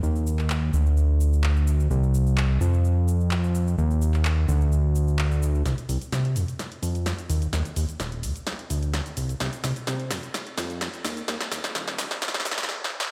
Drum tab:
HH |------------------------------------------------------------------------------------------------|------------------------------------------------------------------------------------------------|------------------------------------------------------------------------------------------------|x-----x-----o-----x-----x-----x-----o-----x-----x-----x-----o-----x-----x-----x-----o-----x-----|
SH |x-----x-----x-----x-----x-----------x-----x-----x-----------x-----x-----x-----x-----x-----x-----|x-----x-----x-----x-----x-----------x-----x-----x-----------x-----x-----x-----x-----x-----x-----|x-----x-----x-----x-----x-----------x-----x-----x-----------x-----x-----x-----x-----x-----x-----|x-----x-----x-----x-----x-----------x-----x-----x-----------x-----x-----x-----x-----x-----x-----|
CP |------------------x-----x-----------------------------------------------x-----------------------|------------------------x-----------------------------------------------x-----------------------|------------------x-----x-----------------------------------------------x-----------------------|------------------------------------------------------------------------------------------------|
SD |------------------------------------------------------------------------------------------------|------------------------------------------------------------------------------------------------|------------------------------------------------------------------------------------------------|o-----------------------o-----------------------o-----------------------o-----------------------|

HH |x-----x-----o-----x-----x-----x-----o-----x-----x-----x-----o-----x-----x-----x-----o-----x-----|x-----x-----o-----x-----x-----x-----o-----x-----x-----x-----o-----x-----x-----x-----o-----x-----|x-----x-----o-----x-----x-----x-----o-----x-----x-----x-----o-----x-----------------------------|
SH |x-----x-----x-----x-----x-----------x-----x-----x-----------x-----x-----x-----x-----x-----x-----|x-----x-----x-----x-----x-----------x-----x-----x-----------x-----x-----x-----x-----x-----x-----|x-----x-----x-----x-----x-----------x-----x-----x-----x-----x-----x-----------------------------|
CP |------------------------------------------------------------------------------------------------|------------------------------------------------------------------------------------------------|------------------------------------------------------------------------------------------------|
SD |o-----------------------o-----------------------o-----------------------o-----------------------|o-----------o-----------o-----------o-----------o-----------o-----------o-----------o-----------|o-----o-----o-----o-----o-----o-----o-----o-----o--o--o--o--o--o--o--o--o-------o-------o-------|